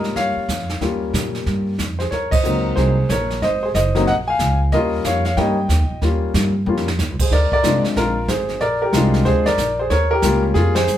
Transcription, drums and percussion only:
0.04 snare
0.16 brush sweep, kick, snare
0.49 kick, snare, hi-hat pedal
0.59 snare
0.69 snare
0.81 brush sweep, kick, snare
1.14 kick, snare, hi-hat pedal
1.35 snare
1.46 brush sweep, kick, snare
1.79 kick, snare, hi-hat pedal
2.00 snare
2.12 brush sweep, kick, snare
2.32 kick, crash
2.44 hi-hat pedal
2.77 brush sweep, kick, snare
3.09 kick, snare, hi-hat pedal
3.30 snare
3.42 brush sweep, kick, snare
3.75 kick, snare, hi-hat pedal
3.95 snare
4.07 brush sweep, kick, snare
4.39 kick, snare, hi-hat pedal
4.72 brush sweep, kick, snare
5.04 kick, snare, hi-hat pedal
5.25 snare
5.37 brush sweep, kick, snare
5.69 kick, snare, hi-hat pedal
6.02 brush sweep, kick, snare
6.34 kick, snare, hi-hat pedal
6.77 snare
6.88 snare
6.99 snare, hi-hat pedal
7.19 kick, crash
7.31 brush sweep, kick, snare
7.52 kick
7.64 kick, snare, hi-hat pedal
7.84 snare
7.96 brush sweep, kick, snare
8.28 kick, snare, hi-hat pedal
8.49 snare
8.61 brush sweep, kick, snare
8.93 kick, snare, hi-hat pedal
9.14 snare
9.25 brush sweep, kick, snare
9.46 snare
9.58 kick, snare, hi-hat pedal
9.90 brush sweep, kick, snare
10.22 kick, snare, hi-hat pedal
10.55 brush sweep, kick, snare
10.76 snare, ride
10.88 hi-hat pedal

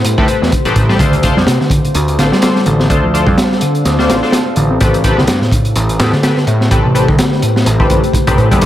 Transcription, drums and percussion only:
0.05 closed hi-hat
0.18 kick
0.28 closed hi-hat
0.43 snare
0.52 kick, closed hi-hat
0.65 closed hi-hat
0.76 kick, closed hi-hat
0.89 snare
0.99 kick, closed hi-hat
1.13 closed hi-hat
1.23 kick, closed hi-hat
1.37 snare
1.47 snare, closed hi-hat
1.61 snare
1.70 kick, closed hi-hat
1.85 closed hi-hat
1.95 closed hi-hat
2.08 closed hi-hat
2.19 snare, closed hi-hat
2.32 snare
2.42 snare, closed hi-hat
2.56 snare
2.66 closed hi-hat
2.80 snare
2.90 kick, closed hi-hat
3.15 closed hi-hat
3.27 kick
3.38 snare, closed hi-hat
3.52 snare
3.61 closed hi-hat
3.75 closed hi-hat
3.85 snare, closed hi-hat
3.99 snare
4.10 snare, closed hi-hat
4.23 snare
4.32 snare, closed hi-hat
4.56 closed hi-hat
4.80 kick, closed hi-hat
4.94 closed hi-hat
5.04 kick, closed hi-hat
5.18 snare
5.27 snare, closed hi-hat
5.42 snare
5.52 kick, closed hi-hat
5.65 closed hi-hat
5.76 closed hi-hat
5.89 closed hi-hat
6.00 snare, closed hi-hat
6.12 snare
6.23 snare, closed hi-hat
6.37 snare
6.47 closed hi-hat
6.61 snare
6.71 kick, closed hi-hat
6.95 closed hi-hat
7.08 kick
7.19 snare, closed hi-hat
7.32 snare
7.42 closed hi-hat
7.56 snare
7.66 closed hi-hat
7.80 kick
7.90 kick, closed hi-hat
8.04 closed hi-hat
8.13 kick, closed hi-hat
8.27 kick, closed hi-hat
8.38 closed hi-hat
8.51 kick, closed hi-hat
8.62 kick, closed hi-hat

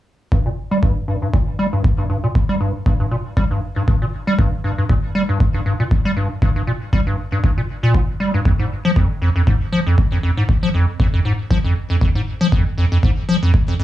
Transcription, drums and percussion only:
0.32 kick
0.83 kick
1.34 kick
1.84 kick
2.35 kick
2.86 kick
3.37 kick
3.88 kick
4.39 kick
4.90 kick
5.40 kick
5.91 kick
6.42 kick
6.93 kick
7.44 kick
7.95 kick
8.45 kick
8.96 kick
9.47 kick
9.98 kick
10.49 kick
11.00 kick
11.51 kick
12.01 kick
12.52 kick
13.03 kick
13.54 kick

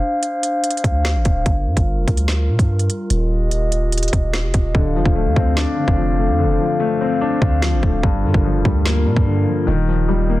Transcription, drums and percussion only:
0.23 closed hi-hat
0.43 closed hi-hat
0.64 closed hi-hat
0.71 closed hi-hat
0.77 closed hi-hat
0.84 kick, closed hi-hat
1.05 snare
1.25 kick, closed hi-hat
1.46 kick, closed hi-hat
1.77 kick, closed hi-hat
2.08 kick, closed hi-hat
2.17 closed hi-hat
2.28 snare
2.59 kick, closed hi-hat
2.79 closed hi-hat
2.90 closed hi-hat
3.10 closed hi-hat
3.51 closed hi-hat
3.72 closed hi-hat
3.92 closed hi-hat
3.98 closed hi-hat
4.03 closed hi-hat
4.08 closed hi-hat
4.13 kick, closed hi-hat
4.34 snare
4.54 kick, closed hi-hat
4.75 kick
5.05 kick
5.36 kick
5.57 snare
5.88 kick
7.42 kick
7.62 snare
7.83 kick
8.03 kick
8.34 kick
8.65 kick
8.86 snare
9.16 kick

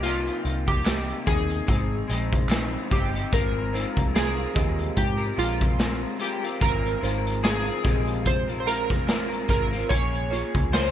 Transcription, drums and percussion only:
0.03 closed hi-hat
0.27 closed hi-hat
0.45 closed hi-hat
0.68 kick, closed hi-hat
0.85 snare, clap, closed hi-hat
1.08 closed hi-hat
1.27 kick, closed hi-hat
1.50 closed hi-hat
1.68 kick, closed hi-hat
2.10 closed hi-hat
2.32 kick, closed hi-hat
2.49 snare, clap, closed hi-hat
2.91 kick, closed hi-hat
3.15 closed hi-hat
3.33 kick, closed hi-hat
3.75 closed hi-hat
3.97 kick, closed hi-hat
4.15 snare, closed hi-hat
4.56 kick, closed hi-hat
4.78 closed hi-hat
4.97 kick, closed hi-hat
5.39 closed hi-hat
5.61 kick, closed hi-hat
5.79 snare, closed hi-hat
6.19 closed hi-hat
6.44 closed hi-hat
6.61 kick, closed hi-hat
6.85 closed hi-hat
7.03 closed hi-hat
7.26 closed hi-hat
7.44 snare, closed hi-hat
7.66 closed hi-hat
7.84 kick, closed hi-hat
8.07 closed hi-hat
8.25 kick, closed hi-hat
8.48 closed hi-hat
8.67 closed hi-hat
8.90 kick, snare, closed hi-hat
9.08 snare, closed hi-hat
9.31 closed hi-hat
9.48 kick, closed hi-hat
9.73 closed hi-hat
9.90 kick, closed hi-hat
10.14 closed hi-hat
10.33 closed hi-hat
10.55 kick, closed hi-hat
10.73 snare, closed hi-hat

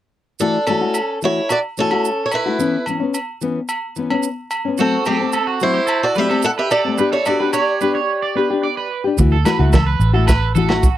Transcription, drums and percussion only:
0.39 maracas
0.67 low agogo, maracas
0.94 low agogo, maracas
1.22 maracas
1.49 low agogo, maracas
1.77 maracas
1.91 low agogo
2.05 maracas
2.31 low agogo, maracas
2.60 maracas
2.86 low agogo, maracas
3.14 low agogo, maracas
3.41 maracas
3.68 low agogo, maracas
3.96 maracas
4.10 low agogo
4.23 maracas
4.51 low agogo, maracas
4.78 maracas
5.05 low agogo, maracas
5.32 low agogo, maracas
5.60 maracas
5.87 low agogo, maracas
6.15 maracas
6.31 low agogo
6.42 maracas
6.71 low agogo, maracas
6.98 maracas
7.26 low agogo, maracas
7.53 low agogo, maracas
7.81 maracas
9.18 kick, muted conga, maracas
9.45 snare, muted conga, low agogo, maracas
9.73 kick, snare, high conga, low agogo, maracas
10.01 muted conga, maracas
10.28 kick, snare, muted conga, low agogo, maracas
10.56 high conga, maracas
10.69 snare, low agogo
10.83 kick, maracas

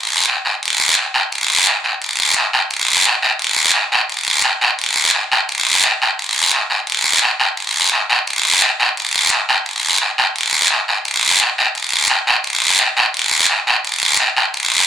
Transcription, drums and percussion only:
0.28 short guiro
0.45 short guiro
0.63 long guiro
0.97 short guiro
1.14 short guiro
1.32 long guiro
1.67 short guiro
1.84 short guiro
2.02 long guiro
2.37 short guiro
2.53 short guiro
2.71 long guiro
3.06 short guiro
3.22 short guiro
3.39 long guiro
3.74 short guiro
3.92 short guiro
4.09 long guiro
4.44 short guiro
4.61 short guiro
4.79 long guiro
5.14 short guiro
5.32 short guiro
5.49 long guiro
5.84 short guiro
6.02 short guiro
6.19 long guiro
6.53 short guiro
6.70 short guiro
6.87 long guiro
7.22 short guiro
7.40 short guiro
7.57 long guiro
7.92 short guiro
8.10 short guiro
8.27 long guiro
8.62 short guiro
8.80 short guiro
8.97 long guiro
9.31 short guiro
9.49 short guiro
9.66 long guiro
10.01 short guiro
10.18 short guiro
10.36 long guiro
10.71 short guiro
10.88 short guiro
11.05 long guiro
11.40 short guiro
11.58 short guiro
11.75 long guiro
12.10 short guiro
12.27 short guiro
12.44 long guiro
12.79 short guiro
12.97 short guiro
13.14 long guiro
13.49 short guiro
13.67 short guiro
13.85 long guiro
14.20 short guiro
14.37 short guiro
14.54 long guiro

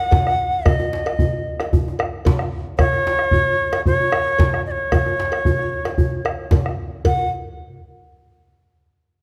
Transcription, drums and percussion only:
0.11 bombo rim, bombo low, cowbell, djembe slap, djembe bass
0.26 bombo rim, djembe slap
0.66 bombo rim, bombo low, cowbell, djembe bass
0.80 bombo rim, djembe tone
0.93 djembe slap
1.06 bombo rim, cowbell
1.19 bombo low, djembe bass
1.60 bombo rim, cowbell, djembe slap
1.73 bombo low, djembe bass
1.88 djembe tone
1.99 bombo rim, cowbell
2.25 bombo rim, bombo low, cowbell, djembe slap, djembe bass
2.39 bombo rim, djembe slap
2.79 bombo rim, bombo low, cowbell, djembe bass
2.93 bombo rim, djembe tone
3.07 djembe slap
3.19 bombo rim
3.31 bombo low, djembe bass
3.73 bombo rim, cowbell, djembe slap
3.86 bombo low, djembe bass
4.00 djembe tone
4.12 bombo rim, cowbell
4.39 bombo rim, bombo low, cowbell, djembe slap, djembe bass
4.54 bombo rim, djembe slap
4.92 bombo rim, bombo low, cowbell, djembe bass
5.06 djembe tone
5.20 djembe slap
5.32 bombo rim, cowbell
5.45 bombo low, djembe bass
5.59 bombo rim
5.72 djembe slap
5.85 bombo rim, cowbell, djembe slap
5.98 bombo low, djembe bass
6.25 bombo rim, cowbell
6.39 djembe slap
6.51 bombo low, cowbell, djembe slap, djembe bass
6.66 bombo rim
7.05 bombo low, cowbell, djembe bass

